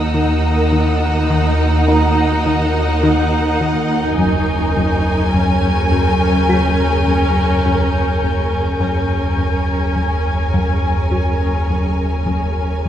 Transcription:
0.00 4.14 D#2 medium
0.00 4.15 D#2 medium
0.00 4.14 D#4 soft
0.00 5.30 D#4 medium
0.00 4.15 F#4 soft
0.00 4.15 A#4 soft
0.00 4.14 F#5 medium
0.00 4.14 A#5 soft
0.00 3.57 D#6 soft
0.00 3.56 E6 soft
0.14 0.49 D#3 medium
0.72 1.07 D#3 soft
1.30 1.65 D#3 medium
1.87 2.23 D#4 medium
1.87 5.30 A#4 soft
1.87 5.30 A#5 medium
2.46 2.81 D#3 medium
3.03 3.38 D#3 medium
3.61 3.96 D#3 soft
4.18 8.76 F#1 medium
4.18 8.76 D#2 medium
4.18 8.76 F#2 medium
4.18 4.53 F#2 medium
4.18 8.80 G#4 soft
4.18 8.76 A#4 medium
4.18 8.77 A#4 medium
4.18 8.80 C#5 soft
4.18 8.78 G#5 medium
4.18 12.79 C#6 soft
4.18 9.78 G6 soft
4.77 5.11 F#2 medium
5.34 5.69 F#2 soft
5.34 8.79 C#4 medium
5.92 6.26 F#2 medium
6.49 6.84 F#3 medium
6.49 9.91 A#4 soft
6.49 9.92 B6 soft
7.08 7.42 F#2 soft
7.65 8.00 F#2 medium
8.23 8.58 F#2 soft
8.79 12.88 F#1 soft
8.79 12.88 D#2 medium
8.79 12.88 F#2 soft
8.79 9.15 F#2 medium
8.79 12.88 C#4 soft
8.79 12.88 G#4 soft
8.79 12.88 A#4 soft
8.79 12.88 C#5 soft
8.79 12.88 G#5 soft
9.38 9.73 F#2 soft
9.78 11.64 G#6 soft
9.96 10.30 F#2 soft
10.54 10.88 F#2 medium
11.11 11.46 F#3 soft
11.70 12.04 F#2 soft
12.26 12.61 F#2 medium

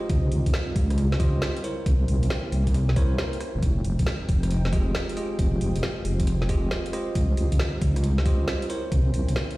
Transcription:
0.00 1.60 C4 medium
0.00 1.60 D#4 medium
0.00 1.18 F4 medium
0.00 1.18 G4 medium
0.00 1.18 C5 medium
0.00 1.18 D#5 medium
0.09 0.29 C#2 medium
0.09 1.63 G3 medium
0.09 1.62 F4 medium
0.09 kick loud
0.09 closed hi-hat medium
0.32 0.43 C#2 medium
0.32 open hi-hat medium
0.46 0.52 C#2 medium
0.46 kick medium
0.46 closed hi-hat medium
0.54 snare loud
0.76 1.40 C#2 medium
0.76 kick loud
0.76 open hi-hat loud
0.90 cross-stick medium
0.90 closed hi-hat medium
0.98 closed hi-hat medium
1.12 snare medium
1.20 1.62 F4 medium
1.20 1.62 G4 medium
1.20 1.62 C5 medium
1.20 1.62 D#5 medium
1.20 kick loud
1.20 open hi-hat loud
1.42 snare loud
1.57 closed hi-hat soft
1.64 3.61 A#3 medium
1.64 3.61 C#4 medium
1.64 2.95 E4 medium
1.64 3.61 E4 medium
1.64 3.61 G4 medium
1.64 2.95 A#4 medium
1.64 2.95 C5 medium
1.64 2.95 C#5 medium
1.64 open hi-hat loud
1.86 2.05 C2 loud
1.86 kick loud
1.86 closed hi-hat medium
2.08 2.20 C2 medium
2.08 open hi-hat medium
2.23 2.29 C2 medium
2.23 closed hi-hat medium
2.30 snare loud
2.52 3.16 C2 medium
2.52 open hi-hat loud
2.67 kick medium
2.67 closed hi-hat medium
2.74 cross-stick soft
2.74 closed hi-hat medium
2.89 snare medium
2.96 3.62 E4 medium
2.96 3.62 A#4 medium
2.96 3.62 C5 medium
2.96 3.62 C#5 loud
2.96 kick loud
2.96 open hi-hat medium
3.18 snare loud
3.33 closed hi-hat soft
3.40 cross-stick medium
3.40 open hi-hat loud
3.55 3.61 G1 loud
3.62 3.82 F1 loud
3.62 7.12 G#3 medium
3.62 8.66 C4 medium
3.62 5.37 D#4 medium
3.62 7.12 G5 medium
3.62 kick loud
3.62 closed hi-hat medium
3.84 3.96 F1 medium
3.84 open hi-hat medium
3.99 4.05 F1 loud
3.99 kick medium
3.99 closed hi-hat medium
4.06 snare loud
4.29 4.93 F1 loud
4.29 kick loud
4.29 open hi-hat loud
4.43 cross-stick soft
4.43 closed hi-hat medium
4.51 closed hi-hat medium
4.65 snare medium
4.73 5.15 F4 medium
4.73 5.15 G4 medium
4.73 5.15 G#4 medium
4.73 5.15 D#5 medium
4.73 kick loud
4.73 open hi-hat medium
4.95 snare loud
5.09 closed hi-hat medium
5.17 6.47 F4 medium
5.17 6.47 G4 medium
5.17 6.47 G#4 medium
5.17 6.47 D#5 medium
5.17 open hi-hat loud
5.39 5.58 F1 loud
5.39 8.67 F4 medium
5.39 kick loud
5.39 closed hi-hat medium
5.61 5.73 F1 medium
5.61 open hi-hat loud
5.76 5.82 F1 medium
5.76 closed hi-hat medium
5.83 snare loud
6.05 6.69 F1 medium
6.05 open hi-hat loud
6.20 kick medium
6.20 closed hi-hat medium
6.27 cross-stick soft
6.27 closed hi-hat medium
6.42 snare medium
6.49 6.91 F4 medium
6.49 6.91 G4 medium
6.49 6.91 G#4 medium
6.49 6.92 D#5 medium
6.49 kick medium
6.49 open hi-hat loud
6.71 snare loud
6.86 closed hi-hat medium
6.93 8.24 F4 medium
6.93 8.24 G4 medium
6.93 8.24 C5 medium
6.93 8.24 D#5 medium
6.93 cross-stick medium
6.93 open hi-hat loud
7.15 7.35 C#2 loud
7.15 8.68 G3 medium
7.15 8.68 D#4 medium
7.15 kick loud
7.15 closed hi-hat medium
7.37 7.49 C#2 medium
7.37 open hi-hat loud
7.52 7.58 C#2 loud
7.52 kick medium
7.52 closed hi-hat medium
7.59 snare loud
7.81 8.46 C#2 loud
7.81 kick loud
7.81 open hi-hat loud
7.96 cross-stick soft
7.96 closed hi-hat medium
8.04 closed hi-hat medium
8.18 snare medium
8.26 8.68 F4 medium
8.26 8.68 G4 medium
8.26 8.68 C5 medium
8.26 8.68 D#5 medium
8.26 kick loud
8.26 open hi-hat loud
8.48 snare loud
8.62 closed hi-hat medium
8.70 9.57 A#3 medium
8.70 9.57 C#4 medium
8.70 9.57 E4 medium
8.70 9.57 A#4 medium
8.70 9.57 C5 medium
8.70 9.57 C#5 medium
8.70 9.57 G5 medium
8.70 open hi-hat loud
8.92 9.11 C2 loud
8.92 kick loud
8.92 closed hi-hat medium
9.14 9.26 C2 medium
9.14 open hi-hat loud
9.28 9.34 C2 medium
9.28 closed hi-hat medium
9.36 snare loud
9.51 closed hi-hat soft

